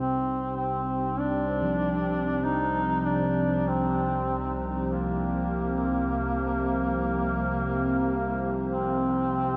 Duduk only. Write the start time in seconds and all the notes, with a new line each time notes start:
0.00 C4
0.57 C4
1.19 D4
2.44 D#4
3.06 D4
3.67 C4
4.89 A#3
8.71 C4